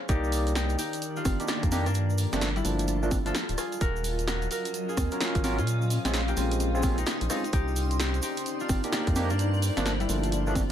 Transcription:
Already playing: C#4
0.09 C2 D#3 A#3 D#4 G4 A#4 D5, kick, closed hi-hat, shaker
0.24 D5, shaker
0.32 open hi-hat, shaker
0.47 closed hi-hat, shaker
0.55 D#4 G4, snare, shaker
0.69 closed hi-hat, shaker
0.79 D#4 G4, open hi-hat, shaker
0.93 closed hi-hat, shaker
1.02 closed hi-hat, shaker
1.16 D4 F4, shaker
1.25 G1, kick, cross-stick, open hi-hat, high conga, shaker
1.40 A#3 D4 D#4 G4, closed hi-hat, shaker
1.48 A#3 D4, snare, shaker
1.63 F2, kick, closed hi-hat, shaker
1.72 A#3 D4 D#4 G4, open hi-hat, high conga, shaker
1.86 G2 A#3 D4, cross-stick, closed hi-hat, shaker
1.94 F4 A4, closed hi-hat, shaker
2.10 shaker
2.18 open hi-hat, shaker
2.33 G1 F3 A3 A#3 D4, snare, closed hi-hat, high conga, shaker
2.41 snare, shaker
2.56 G3 E4, closed hi-hat, shaker
2.65 G1 F3 A3 A#3 D4, open hi-hat, shaker
2.79 closed hi-hat, shaker
2.88 closed hi-hat, shaker
3.03 F3 A3 A#3 D4, shaker
3.11 kick, open hi-hat, high conga, shaker
3.26 F3 A3 A#3 D4 F4 A4, closed hi-hat, shaker
3.35 snare, shaker
3.49 D1, closed hi-hat, shaker
3.58 F#3 C#4 F4 G#4 D#5 F5, cross-stick, open hi-hat, shaker
3.72 closed hi-hat, shaker
3.81 D#1 F#4 A#4, kick, closed hi-hat, shaker
3.96 shaker
4.02 F#3, open hi-hat, shaker
4.19 closed hi-hat, shaker
4.27 F#4 A#4, snare, shaker
4.42 closed hi-hat, shaker
4.51 F#4 A#4 F5, open hi-hat, shaker
4.65 closed hi-hat, shaker
4.74 closed hi-hat, shaker
4.89 F4 G#4, shaker
4.97 D#2, kick, cross-stick, open hi-hat, high conga, shaker
5.11 C#4 F4 F#4 A#4, closed hi-hat, shaker
5.20 C#4 F4, snare, shaker
5.35 G#1, kick, closed hi-hat, shaker
5.44 C#4 F4 F#4 A#4, open hi-hat, high conga, shaker
5.58 A#2 C#4 F4, cross-stick, closed hi-hat, shaker
5.67 F4 G#4 C5, closed hi-hat, shaker
5.82 shaker
5.90 open hi-hat, shaker
5.99 C6
6.05 A#1 G#3 C4 C#4 F4, snare, closed hi-hat, high conga, shaker
6.14 snare, shaker
6.28 A#3 G4, closed hi-hat, shaker
6.37 A#1 G#3 C4 C#4 F4, open hi-hat, shaker
6.51 closed hi-hat, shaker
6.60 closed hi-hat, shaker
6.75 G#3 C4 C#4 F4, shaker
6.83 G#3 C4 C#4 F4, kick, open hi-hat, high conga, shaker
6.98 C4 D#4, closed hi-hat, shaker
7.06 snare, shaker
7.21 A#1, closed hi-hat, shaker
7.30 G#3 C4 C#4 D#4 F4, cross-stick, open hi-hat, shaker
7.44 closed hi-hat, shaker
7.53 C2 C4 D#4 G4 C5 D5, kick, closed hi-hat, shaker
7.68 shaker
7.76 open hi-hat, shaker
7.81 D5
7.91 closed hi-hat, shaker
7.99 D#4 G4, snare, shaker
8.14 closed hi-hat, shaker
8.22 D#4 G4, open hi-hat, shaker
8.37 closed hi-hat, shaker
8.46 closed hi-hat, shaker
8.60 D4 F4, shaker
8.69 G1, kick, cross-stick, open hi-hat, high conga, shaker
8.83 A#3 D4 D#4 G4, closed hi-hat, shaker
8.92 A#3 D4, snare, shaker
9.07 F2, kick, closed hi-hat, shaker
9.16 A#3 D4 D#4 G4, open hi-hat, high conga, shaker
9.30 G2 A#3 D4, cross-stick, closed hi-hat, shaker
9.39 F4 A4 F5, closed hi-hat, shaker
9.54 shaker
9.62 open hi-hat, shaker
9.77 G1 F3 A3 A#3 D4, snare, closed hi-hat, high conga, shaker
9.86 snare, shaker
10.00 G3 E4, closed hi-hat, shaker
10.09 G1 F3 A3 A#3 D4, open hi-hat, shaker
10.24 closed hi-hat, shaker
10.32 closed hi-hat, shaker
10.47 F3 A3 A#3 D4, shaker
10.55 kick, open hi-hat, high conga, shaker

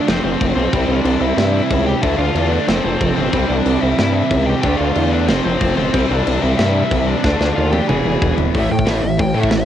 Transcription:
0.06 F1 F2 C3 F3 A3 C4 F4 C5, snare, crash
0.24 F1 C4 C5
0.41 F1, kick, crash
0.55 B1 F3 A3 C4 F4 C5
0.72 C2 C3 E3 G3 C4 E4, kick, crash
0.88 C2 D4 D5
1.05 C2, crash
1.19 C2 C3 E3 G3 C4 E4 E5
1.24 E4
1.37 G2 E4 E5, snare, crash
1.53 E4 E5
1.71 C#2, kick, crash
1.86 G4 G5
2.01 D2 D3 A3 D4 E4 F4 E5, kick, crash
2.17 D2 F4 F5
2.35 E2, crash
2.49 D3 A3 D4 F4 D5
2.66 F1 F2 C3 F3 A3 C4 F4 C5, snare, crash
2.71 F3
2.84 F1 C4 C5
3.01 F1, kick, crash
3.16 D1 F3 A3 C4 F4 C5
3.32 C2 C3 E3 G3 C4 E4, kick, crash
3.48 C2 D4 D5
3.66 C2, crash
3.80 C2 C3 E3 G3 C4 E4 E5
3.98 G2 E4 E5, snare, crash
4.13 E4 E5
4.31 C#2, kick, crash
4.46 G4 G5
4.61 D2 D3 A3 D4 F4 G4 G5, kick, crash
4.78 D2 F4 F5
4.95 E2, crash
5.10 D3 A3 D4 F4 D5
5.26 F1 F2 C3 F3 A3 C4 F4 C5, snare, crash
5.31 F3
5.44 F1 C4 C5
5.61 F1, kick, crash
5.77 D1 F3 A3 C4 F4 C5
5.92 C2 C3 E3 G3 C4 E4, kick, crash
6.10 C2 D4 D5
6.27 C2, crash
6.41 C2 C3 E3 G3 C4 E4 E5
6.58 G2 E4 E5, snare, crash
6.74 E4 E5
6.91 C2, kick, crash
7.07 D4 D5
7.22 D2 D3 A3 D4 F4, kick, snare
7.41 D2, snare
7.55 D#2 F4 F5
7.72 D3 A3 D4 F4 G4 G5, high tom
7.87 E1 E2 B2 E3 G#3 B3 E4 G#4 G#5, mid tom
7.93 E3
8.05 E1
8.21 E1, kick, floor tom
8.37 D1 E3 G#3 B3 E4, floor tom
8.53 A1 A2 E3 A3, kick, open hi-hat
8.59 E5
8.69 A2 E3 G5
8.79 kick
8.85 A1 A2 E3 A3 E5, snare, open hi-hat
9.01 A1 A2 E3 E5
9.17 A1 A2 E3 G5, kick, open hi-hat
9.33 A2 E3 A3
9.41 E5, kick
9.50 A1 A2 E3, snare, open hi-hat
9.57 E5

